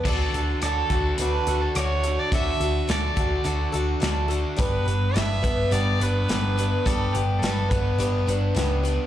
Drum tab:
CC |x-------|--------|--------|--------|
HH |-xxxxxxx|xxxxxxxx|xxxxxxxx|xxxxxxxx|
SD |--r---r-|--o---o-|--o---o-|--o---o-|
BD |o--o----|o--o----|o--o----|o--o----|